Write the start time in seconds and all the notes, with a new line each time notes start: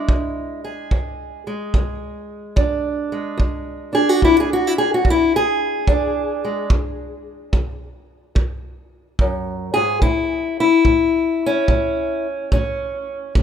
Already playing: G#3 D4 E4
0.08 E2, kick
0.64 G#4
0.91 E2, kick
1.47 G#3
1.74 E2, kick
2.56 E2 D4, kick
3.12 G#3
3.38 E2, kick
3.93 D4 G#4
4.09 F#4
4.22 E2 E4, kick
4.40 G#4
4.53 F#4
4.67 E4
4.78 G#4
4.94 F#4
5.05 E2, kick
5.10 E4
5.36 G#4
5.87 E2 D4, kick
6.45 G#3
6.70 E2, kick
7.53 E2, kick
8.35 E2, kick
9.19 F#2, kick
9.74 G#2 G#4
10.02 A2 E4, kick
10.60 E4
10.85 A2, kick
11.46 C#4
11.68 A2, kick
12.52 A2 C#4, kick
13.35 A2, kick